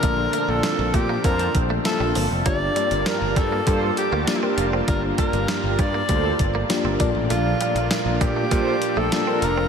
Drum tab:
HH |x-x-x-x-xxx-x-o-|x-xxx-x-x-x-x-x-|x-xxx-x-x-x-x-x-|x-xxx-x-x-x-x-x-|
TB |----x-------x---|----x-------x---|----x-------x---|----x-------x---|
SD |----o-------o---|----o-------o---|----o-------o---|----o-------o---|
BD |o-----o-o-o-----|o-----o-o-------|o-o---o-o-o---o-|------o-o-------|